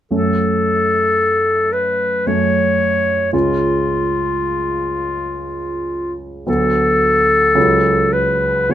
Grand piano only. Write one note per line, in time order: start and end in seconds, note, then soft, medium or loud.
0.11 2.22 F#2 soft
0.11 2.23 A3 soft
0.11 2.23 C#4 soft
0.11 2.23 F#4 soft
2.26 3.30 F#2 soft
2.26 3.30 A3 soft
2.26 3.30 C#4 soft
2.26 3.30 F#4 soft
3.33 6.44 C#2 soft
3.33 6.43 G#3 soft
3.33 6.44 C#4 soft
3.33 6.43 F4 soft
6.47 7.52 D2 soft
6.47 7.52 F#3 soft
6.47 7.52 B3 soft
6.47 7.52 F#4 soft
7.55 8.66 C#2 soft
7.55 8.66 F#3 soft
7.55 8.66 C#4 soft
7.55 8.66 F#4 soft
8.69 8.74 C#2 soft
8.69 8.74 B3 soft
8.69 8.74 C#4 soft
8.69 8.74 F4 soft